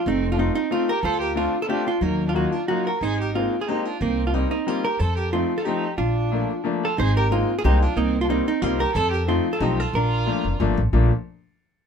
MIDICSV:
0, 0, Header, 1, 5, 480
1, 0, Start_track
1, 0, Key_signature, -2, "major"
1, 0, Tempo, 329489
1, 84, Time_signature, 3, 2, 24, 8
1, 17291, End_track
2, 0, Start_track
2, 0, Title_t, "Hollow-body jazz guitar"
2, 0, Program_c, 0, 26
2, 108, Note_on_c, 0, 57, 66
2, 116, Note_on_c, 0, 63, 84
2, 465, Note_on_c, 0, 65, 77
2, 479, Note_off_c, 0, 63, 0
2, 571, Note_on_c, 0, 63, 74
2, 573, Note_off_c, 0, 65, 0
2, 780, Note_off_c, 0, 57, 0
2, 789, Note_off_c, 0, 63, 0
2, 807, Note_on_c, 0, 63, 92
2, 1040, Note_off_c, 0, 63, 0
2, 1051, Note_on_c, 0, 65, 88
2, 1302, Note_on_c, 0, 70, 92
2, 1307, Note_off_c, 0, 65, 0
2, 1522, Note_on_c, 0, 65, 73
2, 1526, Note_off_c, 0, 70, 0
2, 1532, Note_on_c, 0, 72, 87
2, 1768, Note_off_c, 0, 72, 0
2, 1768, Note_on_c, 0, 70, 85
2, 1982, Note_off_c, 0, 65, 0
2, 1997, Note_off_c, 0, 70, 0
2, 1999, Note_on_c, 0, 65, 88
2, 2357, Note_off_c, 0, 65, 0
2, 2363, Note_on_c, 0, 69, 92
2, 2411, Note_off_c, 0, 69, 0
2, 2471, Note_on_c, 0, 67, 80
2, 2731, Note_off_c, 0, 67, 0
2, 2734, Note_on_c, 0, 65, 75
2, 2943, Note_on_c, 0, 54, 57
2, 2948, Note_off_c, 0, 65, 0
2, 2948, Note_on_c, 0, 63, 64
2, 3322, Note_off_c, 0, 63, 0
2, 3336, Note_on_c, 0, 65, 73
2, 3428, Note_off_c, 0, 65, 0
2, 3436, Note_on_c, 0, 66, 64
2, 3630, Note_off_c, 0, 54, 0
2, 3676, Note_off_c, 0, 66, 0
2, 3676, Note_on_c, 0, 65, 76
2, 3903, Note_off_c, 0, 65, 0
2, 3908, Note_on_c, 0, 66, 80
2, 4173, Note_off_c, 0, 66, 0
2, 4180, Note_on_c, 0, 70, 81
2, 4408, Note_on_c, 0, 63, 74
2, 4417, Note_off_c, 0, 70, 0
2, 4417, Note_on_c, 0, 72, 72
2, 4683, Note_off_c, 0, 72, 0
2, 4683, Note_on_c, 0, 70, 82
2, 4886, Note_on_c, 0, 65, 72
2, 4892, Note_off_c, 0, 70, 0
2, 5094, Note_off_c, 0, 63, 0
2, 5258, Note_off_c, 0, 65, 0
2, 5264, Note_on_c, 0, 68, 72
2, 5366, Note_off_c, 0, 68, 0
2, 5366, Note_on_c, 0, 67, 82
2, 5614, Note_off_c, 0, 67, 0
2, 5614, Note_on_c, 0, 65, 86
2, 5844, Note_off_c, 0, 65, 0
2, 5844, Note_on_c, 0, 63, 78
2, 5857, Note_on_c, 0, 58, 52
2, 6214, Note_off_c, 0, 63, 0
2, 6220, Note_on_c, 0, 65, 64
2, 6318, Note_off_c, 0, 65, 0
2, 6318, Note_on_c, 0, 63, 72
2, 6535, Note_off_c, 0, 58, 0
2, 6553, Note_off_c, 0, 63, 0
2, 6571, Note_on_c, 0, 63, 77
2, 6815, Note_off_c, 0, 63, 0
2, 6815, Note_on_c, 0, 65, 86
2, 7059, Note_on_c, 0, 70, 83
2, 7071, Note_off_c, 0, 65, 0
2, 7273, Note_on_c, 0, 69, 63
2, 7280, Note_on_c, 0, 72, 77
2, 7281, Note_off_c, 0, 70, 0
2, 7528, Note_off_c, 0, 72, 0
2, 7529, Note_on_c, 0, 70, 71
2, 7761, Note_off_c, 0, 70, 0
2, 7763, Note_on_c, 0, 65, 73
2, 7960, Note_off_c, 0, 69, 0
2, 8125, Note_on_c, 0, 69, 76
2, 8138, Note_off_c, 0, 65, 0
2, 8234, Note_off_c, 0, 69, 0
2, 8234, Note_on_c, 0, 67, 75
2, 8705, Note_off_c, 0, 67, 0
2, 8710, Note_on_c, 0, 65, 70
2, 8721, Note_on_c, 0, 62, 49
2, 9622, Note_off_c, 0, 65, 0
2, 9627, Note_off_c, 0, 62, 0
2, 9978, Note_on_c, 0, 69, 77
2, 10172, Note_on_c, 0, 63, 70
2, 10186, Note_off_c, 0, 69, 0
2, 10191, Note_on_c, 0, 72, 93
2, 10440, Note_off_c, 0, 72, 0
2, 10446, Note_on_c, 0, 70, 91
2, 10663, Note_on_c, 0, 65, 91
2, 10669, Note_off_c, 0, 70, 0
2, 10862, Note_off_c, 0, 63, 0
2, 11039, Note_off_c, 0, 65, 0
2, 11051, Note_on_c, 0, 68, 96
2, 11139, Note_off_c, 0, 68, 0
2, 11145, Note_on_c, 0, 67, 102
2, 11397, Note_off_c, 0, 67, 0
2, 11397, Note_on_c, 0, 65, 96
2, 11608, Note_on_c, 0, 58, 56
2, 11617, Note_on_c, 0, 63, 81
2, 11622, Note_off_c, 0, 65, 0
2, 11951, Note_off_c, 0, 63, 0
2, 11964, Note_on_c, 0, 65, 77
2, 12085, Note_off_c, 0, 65, 0
2, 12092, Note_on_c, 0, 63, 78
2, 12291, Note_off_c, 0, 58, 0
2, 12335, Note_off_c, 0, 63, 0
2, 12352, Note_on_c, 0, 63, 84
2, 12557, Note_off_c, 0, 63, 0
2, 12557, Note_on_c, 0, 65, 86
2, 12822, Note_off_c, 0, 65, 0
2, 12823, Note_on_c, 0, 70, 86
2, 13049, Note_off_c, 0, 70, 0
2, 13049, Note_on_c, 0, 72, 105
2, 13062, Note_on_c, 0, 69, 75
2, 13311, Note_off_c, 0, 72, 0
2, 13311, Note_on_c, 0, 70, 80
2, 13527, Note_on_c, 0, 65, 73
2, 13529, Note_off_c, 0, 70, 0
2, 13731, Note_off_c, 0, 69, 0
2, 13882, Note_on_c, 0, 69, 83
2, 13898, Note_off_c, 0, 65, 0
2, 14014, Note_off_c, 0, 69, 0
2, 14014, Note_on_c, 0, 67, 81
2, 14275, Note_off_c, 0, 67, 0
2, 14275, Note_on_c, 0, 69, 87
2, 14491, Note_off_c, 0, 69, 0
2, 14498, Note_on_c, 0, 70, 83
2, 14515, Note_on_c, 0, 62, 62
2, 15395, Note_off_c, 0, 70, 0
2, 15404, Note_off_c, 0, 62, 0
2, 17291, End_track
3, 0, Start_track
3, 0, Title_t, "Violin"
3, 0, Program_c, 1, 40
3, 113, Note_on_c, 1, 60, 85
3, 442, Note_off_c, 1, 60, 0
3, 485, Note_on_c, 1, 62, 65
3, 573, Note_off_c, 1, 62, 0
3, 586, Note_on_c, 1, 60, 60
3, 813, Note_off_c, 1, 60, 0
3, 845, Note_on_c, 1, 60, 63
3, 1038, Note_off_c, 1, 60, 0
3, 1061, Note_on_c, 1, 60, 73
3, 1288, Note_off_c, 1, 60, 0
3, 1305, Note_on_c, 1, 67, 79
3, 1500, Note_off_c, 1, 67, 0
3, 1509, Note_on_c, 1, 69, 94
3, 1766, Note_on_c, 1, 67, 75
3, 1788, Note_off_c, 1, 69, 0
3, 1986, Note_off_c, 1, 67, 0
3, 1994, Note_on_c, 1, 62, 60
3, 2332, Note_off_c, 1, 62, 0
3, 2364, Note_on_c, 1, 65, 71
3, 2473, Note_on_c, 1, 62, 81
3, 2495, Note_off_c, 1, 65, 0
3, 2720, Note_off_c, 1, 62, 0
3, 2729, Note_on_c, 1, 62, 65
3, 2957, Note_on_c, 1, 58, 81
3, 2979, Note_off_c, 1, 62, 0
3, 3307, Note_off_c, 1, 58, 0
3, 3316, Note_on_c, 1, 62, 65
3, 3418, Note_off_c, 1, 62, 0
3, 3433, Note_on_c, 1, 63, 61
3, 3671, Note_on_c, 1, 62, 57
3, 3693, Note_off_c, 1, 63, 0
3, 3900, Note_off_c, 1, 62, 0
3, 3908, Note_on_c, 1, 63, 68
3, 4148, Note_off_c, 1, 63, 0
3, 4161, Note_on_c, 1, 66, 64
3, 4393, Note_on_c, 1, 68, 90
3, 4414, Note_off_c, 1, 66, 0
3, 4671, Note_on_c, 1, 67, 69
3, 4693, Note_off_c, 1, 68, 0
3, 4873, Note_off_c, 1, 67, 0
3, 4882, Note_on_c, 1, 60, 60
3, 5224, Note_off_c, 1, 60, 0
3, 5265, Note_on_c, 1, 65, 72
3, 5377, Note_on_c, 1, 63, 69
3, 5399, Note_off_c, 1, 65, 0
3, 5636, Note_on_c, 1, 62, 62
3, 5658, Note_off_c, 1, 63, 0
3, 5853, Note_on_c, 1, 60, 83
3, 5875, Note_off_c, 1, 62, 0
3, 6215, Note_off_c, 1, 60, 0
3, 6222, Note_on_c, 1, 62, 60
3, 6325, Note_on_c, 1, 60, 64
3, 6346, Note_off_c, 1, 62, 0
3, 6568, Note_off_c, 1, 60, 0
3, 6576, Note_on_c, 1, 60, 63
3, 6818, Note_off_c, 1, 60, 0
3, 6818, Note_on_c, 1, 60, 59
3, 7066, Note_off_c, 1, 60, 0
3, 7077, Note_on_c, 1, 67, 67
3, 7302, Note_on_c, 1, 69, 91
3, 7323, Note_off_c, 1, 67, 0
3, 7541, Note_on_c, 1, 67, 75
3, 7563, Note_off_c, 1, 69, 0
3, 7760, Note_off_c, 1, 67, 0
3, 7778, Note_on_c, 1, 60, 62
3, 8110, Note_off_c, 1, 60, 0
3, 8127, Note_on_c, 1, 65, 70
3, 8236, Note_on_c, 1, 63, 72
3, 8258, Note_off_c, 1, 65, 0
3, 8711, Note_off_c, 1, 63, 0
3, 8719, Note_on_c, 1, 62, 63
3, 9626, Note_off_c, 1, 62, 0
3, 9969, Note_on_c, 1, 65, 69
3, 10168, Note_off_c, 1, 65, 0
3, 10185, Note_on_c, 1, 68, 92
3, 10421, Note_off_c, 1, 68, 0
3, 10440, Note_on_c, 1, 67, 79
3, 10645, Note_off_c, 1, 67, 0
3, 10681, Note_on_c, 1, 60, 63
3, 11012, Note_off_c, 1, 60, 0
3, 11063, Note_on_c, 1, 65, 74
3, 11149, Note_off_c, 1, 65, 0
3, 11168, Note_on_c, 1, 63, 75
3, 11397, Note_on_c, 1, 62, 75
3, 11419, Note_off_c, 1, 63, 0
3, 11616, Note_off_c, 1, 62, 0
3, 11644, Note_on_c, 1, 60, 84
3, 11969, Note_off_c, 1, 60, 0
3, 12003, Note_on_c, 1, 62, 65
3, 12088, Note_off_c, 1, 62, 0
3, 12096, Note_on_c, 1, 60, 63
3, 12330, Note_off_c, 1, 60, 0
3, 12343, Note_on_c, 1, 60, 71
3, 12562, Note_off_c, 1, 60, 0
3, 12562, Note_on_c, 1, 60, 75
3, 12792, Note_off_c, 1, 60, 0
3, 12800, Note_on_c, 1, 67, 80
3, 13036, Note_on_c, 1, 69, 106
3, 13057, Note_off_c, 1, 67, 0
3, 13278, Note_on_c, 1, 67, 76
3, 13300, Note_off_c, 1, 69, 0
3, 13500, Note_off_c, 1, 67, 0
3, 13509, Note_on_c, 1, 60, 70
3, 13853, Note_off_c, 1, 60, 0
3, 13889, Note_on_c, 1, 65, 73
3, 13999, Note_on_c, 1, 63, 71
3, 14021, Note_off_c, 1, 65, 0
3, 14241, Note_on_c, 1, 65, 73
3, 14263, Note_off_c, 1, 63, 0
3, 14467, Note_off_c, 1, 65, 0
3, 14480, Note_on_c, 1, 65, 90
3, 15386, Note_off_c, 1, 65, 0
3, 17291, End_track
4, 0, Start_track
4, 0, Title_t, "Upright piano"
4, 0, Program_c, 2, 0
4, 541, Note_on_c, 2, 57, 50
4, 552, Note_on_c, 2, 60, 52
4, 556, Note_on_c, 2, 63, 49
4, 567, Note_on_c, 2, 65, 62
4, 807, Note_off_c, 2, 57, 0
4, 813, Note_off_c, 2, 60, 0
4, 814, Note_off_c, 2, 63, 0
4, 820, Note_off_c, 2, 65, 0
4, 1031, Note_on_c, 2, 60, 55
4, 1032, Note_on_c, 2, 57, 64
4, 1047, Note_on_c, 2, 63, 57
4, 1052, Note_on_c, 2, 65, 66
4, 1290, Note_off_c, 2, 60, 0
4, 1291, Note_off_c, 2, 57, 0
4, 1298, Note_off_c, 2, 63, 0
4, 1300, Note_off_c, 2, 65, 0
4, 1974, Note_on_c, 2, 57, 55
4, 1988, Note_on_c, 2, 62, 54
4, 1989, Note_on_c, 2, 60, 53
4, 1991, Note_on_c, 2, 65, 67
4, 2237, Note_off_c, 2, 57, 0
4, 2244, Note_off_c, 2, 60, 0
4, 2244, Note_off_c, 2, 62, 0
4, 2246, Note_off_c, 2, 65, 0
4, 2455, Note_on_c, 2, 60, 59
4, 2457, Note_on_c, 2, 57, 62
4, 2466, Note_on_c, 2, 65, 74
4, 2469, Note_on_c, 2, 62, 61
4, 2716, Note_off_c, 2, 60, 0
4, 2717, Note_off_c, 2, 57, 0
4, 2721, Note_off_c, 2, 65, 0
4, 2722, Note_off_c, 2, 62, 0
4, 3414, Note_on_c, 2, 54, 55
4, 3416, Note_on_c, 2, 58, 50
4, 3417, Note_on_c, 2, 63, 50
4, 3429, Note_on_c, 2, 65, 63
4, 3676, Note_off_c, 2, 54, 0
4, 3677, Note_off_c, 2, 58, 0
4, 3678, Note_off_c, 2, 63, 0
4, 3684, Note_off_c, 2, 65, 0
4, 3912, Note_on_c, 2, 54, 53
4, 3914, Note_on_c, 2, 58, 48
4, 3926, Note_on_c, 2, 63, 51
4, 3928, Note_on_c, 2, 65, 62
4, 4168, Note_off_c, 2, 54, 0
4, 4169, Note_off_c, 2, 58, 0
4, 4175, Note_off_c, 2, 63, 0
4, 4175, Note_off_c, 2, 65, 0
4, 4881, Note_on_c, 2, 56, 56
4, 4882, Note_on_c, 2, 60, 47
4, 4887, Note_on_c, 2, 58, 52
4, 4888, Note_on_c, 2, 63, 59
4, 5137, Note_off_c, 2, 56, 0
4, 5137, Note_off_c, 2, 60, 0
4, 5140, Note_off_c, 2, 58, 0
4, 5140, Note_off_c, 2, 63, 0
4, 5370, Note_on_c, 2, 56, 55
4, 5378, Note_on_c, 2, 60, 58
4, 5379, Note_on_c, 2, 58, 56
4, 5393, Note_on_c, 2, 63, 67
4, 5622, Note_off_c, 2, 56, 0
4, 5626, Note_off_c, 2, 58, 0
4, 5626, Note_off_c, 2, 60, 0
4, 5633, Note_off_c, 2, 63, 0
4, 6322, Note_on_c, 2, 55, 57
4, 6325, Note_on_c, 2, 58, 54
4, 6330, Note_on_c, 2, 60, 44
4, 6336, Note_on_c, 2, 63, 70
4, 6578, Note_off_c, 2, 55, 0
4, 6580, Note_off_c, 2, 58, 0
4, 6582, Note_off_c, 2, 60, 0
4, 6585, Note_off_c, 2, 63, 0
4, 6799, Note_on_c, 2, 55, 60
4, 6800, Note_on_c, 2, 58, 53
4, 6803, Note_on_c, 2, 60, 56
4, 6811, Note_on_c, 2, 63, 65
4, 7056, Note_off_c, 2, 55, 0
4, 7056, Note_off_c, 2, 58, 0
4, 7058, Note_off_c, 2, 60, 0
4, 7062, Note_off_c, 2, 63, 0
4, 7760, Note_on_c, 2, 53, 55
4, 7768, Note_on_c, 2, 57, 54
4, 7771, Note_on_c, 2, 63, 60
4, 7773, Note_on_c, 2, 60, 46
4, 8015, Note_off_c, 2, 53, 0
4, 8018, Note_off_c, 2, 57, 0
4, 8020, Note_off_c, 2, 63, 0
4, 8021, Note_off_c, 2, 60, 0
4, 8246, Note_on_c, 2, 53, 62
4, 8250, Note_on_c, 2, 57, 56
4, 8261, Note_on_c, 2, 60, 59
4, 8267, Note_on_c, 2, 63, 65
4, 8497, Note_off_c, 2, 53, 0
4, 8499, Note_off_c, 2, 57, 0
4, 8504, Note_off_c, 2, 60, 0
4, 8507, Note_off_c, 2, 63, 0
4, 9204, Note_on_c, 2, 57, 56
4, 9205, Note_on_c, 2, 53, 47
4, 9213, Note_on_c, 2, 58, 56
4, 9217, Note_on_c, 2, 62, 58
4, 9459, Note_off_c, 2, 57, 0
4, 9460, Note_off_c, 2, 53, 0
4, 9464, Note_off_c, 2, 58, 0
4, 9466, Note_off_c, 2, 62, 0
4, 9669, Note_on_c, 2, 53, 69
4, 9680, Note_on_c, 2, 57, 63
4, 9681, Note_on_c, 2, 58, 60
4, 9692, Note_on_c, 2, 62, 76
4, 9938, Note_off_c, 2, 53, 0
4, 9943, Note_off_c, 2, 57, 0
4, 9944, Note_off_c, 2, 58, 0
4, 9950, Note_off_c, 2, 62, 0
4, 10650, Note_on_c, 2, 56, 61
4, 10662, Note_on_c, 2, 58, 53
4, 10664, Note_on_c, 2, 60, 54
4, 10672, Note_on_c, 2, 63, 65
4, 10910, Note_off_c, 2, 56, 0
4, 10916, Note_off_c, 2, 58, 0
4, 10917, Note_off_c, 2, 60, 0
4, 10922, Note_off_c, 2, 63, 0
4, 11137, Note_on_c, 2, 56, 66
4, 11143, Note_on_c, 2, 58, 64
4, 11147, Note_on_c, 2, 60, 59
4, 11159, Note_on_c, 2, 63, 66
4, 11393, Note_off_c, 2, 56, 0
4, 11396, Note_off_c, 2, 58, 0
4, 11398, Note_off_c, 2, 60, 0
4, 11404, Note_off_c, 2, 63, 0
4, 12073, Note_on_c, 2, 55, 60
4, 12078, Note_on_c, 2, 58, 50
4, 12080, Note_on_c, 2, 60, 60
4, 12097, Note_on_c, 2, 63, 62
4, 12336, Note_off_c, 2, 55, 0
4, 12338, Note_off_c, 2, 58, 0
4, 12339, Note_off_c, 2, 60, 0
4, 12347, Note_off_c, 2, 63, 0
4, 12561, Note_on_c, 2, 55, 65
4, 12566, Note_on_c, 2, 58, 53
4, 12573, Note_on_c, 2, 63, 68
4, 12578, Note_on_c, 2, 60, 58
4, 12816, Note_off_c, 2, 55, 0
4, 12818, Note_off_c, 2, 58, 0
4, 12822, Note_off_c, 2, 63, 0
4, 12824, Note_off_c, 2, 60, 0
4, 13517, Note_on_c, 2, 53, 53
4, 13522, Note_on_c, 2, 57, 54
4, 13522, Note_on_c, 2, 60, 46
4, 13531, Note_on_c, 2, 63, 70
4, 13771, Note_off_c, 2, 53, 0
4, 13773, Note_off_c, 2, 57, 0
4, 13773, Note_off_c, 2, 60, 0
4, 13778, Note_off_c, 2, 63, 0
4, 13995, Note_on_c, 2, 57, 59
4, 13999, Note_on_c, 2, 53, 64
4, 14000, Note_on_c, 2, 60, 56
4, 14003, Note_on_c, 2, 63, 80
4, 14250, Note_off_c, 2, 57, 0
4, 14252, Note_off_c, 2, 53, 0
4, 14253, Note_off_c, 2, 60, 0
4, 14254, Note_off_c, 2, 63, 0
4, 14954, Note_on_c, 2, 53, 62
4, 14959, Note_on_c, 2, 57, 54
4, 14966, Note_on_c, 2, 58, 45
4, 14969, Note_on_c, 2, 62, 65
4, 15214, Note_off_c, 2, 53, 0
4, 15216, Note_off_c, 2, 57, 0
4, 15219, Note_off_c, 2, 58, 0
4, 15221, Note_off_c, 2, 62, 0
4, 15439, Note_on_c, 2, 53, 77
4, 15449, Note_on_c, 2, 57, 70
4, 15451, Note_on_c, 2, 58, 60
4, 15453, Note_on_c, 2, 62, 81
4, 15701, Note_off_c, 2, 53, 0
4, 15706, Note_off_c, 2, 57, 0
4, 15707, Note_off_c, 2, 58, 0
4, 15708, Note_off_c, 2, 62, 0
4, 15922, Note_on_c, 2, 53, 77
4, 15927, Note_on_c, 2, 57, 61
4, 15930, Note_on_c, 2, 58, 67
4, 15931, Note_on_c, 2, 62, 76
4, 16164, Note_off_c, 2, 53, 0
4, 16167, Note_off_c, 2, 57, 0
4, 16168, Note_off_c, 2, 58, 0
4, 16169, Note_off_c, 2, 62, 0
4, 17291, End_track
5, 0, Start_track
5, 0, Title_t, "Upright bass"
5, 0, Program_c, 3, 32
5, 90, Note_on_c, 3, 29, 101
5, 708, Note_off_c, 3, 29, 0
5, 1501, Note_on_c, 3, 38, 90
5, 2123, Note_off_c, 3, 38, 0
5, 2931, Note_on_c, 3, 39, 95
5, 3560, Note_off_c, 3, 39, 0
5, 4388, Note_on_c, 3, 32, 75
5, 5018, Note_off_c, 3, 32, 0
5, 5839, Note_on_c, 3, 36, 97
5, 6464, Note_off_c, 3, 36, 0
5, 7279, Note_on_c, 3, 41, 88
5, 7901, Note_off_c, 3, 41, 0
5, 8709, Note_on_c, 3, 34, 90
5, 9340, Note_off_c, 3, 34, 0
5, 10174, Note_on_c, 3, 32, 96
5, 10800, Note_off_c, 3, 32, 0
5, 11134, Note_on_c, 3, 36, 101
5, 11445, Note_off_c, 3, 36, 0
5, 11599, Note_on_c, 3, 36, 81
5, 12221, Note_off_c, 3, 36, 0
5, 12559, Note_on_c, 3, 36, 97
5, 12868, Note_off_c, 3, 36, 0
5, 13038, Note_on_c, 3, 41, 104
5, 13658, Note_off_c, 3, 41, 0
5, 13992, Note_on_c, 3, 35, 101
5, 14303, Note_off_c, 3, 35, 0
5, 14471, Note_on_c, 3, 34, 93
5, 14953, Note_off_c, 3, 34, 0
5, 15215, Note_on_c, 3, 29, 77
5, 15418, Note_off_c, 3, 29, 0
5, 15442, Note_on_c, 3, 31, 93
5, 15676, Note_off_c, 3, 31, 0
5, 15697, Note_on_c, 3, 33, 93
5, 15902, Note_off_c, 3, 33, 0
5, 15923, Note_on_c, 3, 34, 87
5, 16164, Note_off_c, 3, 34, 0
5, 17291, End_track
0, 0, End_of_file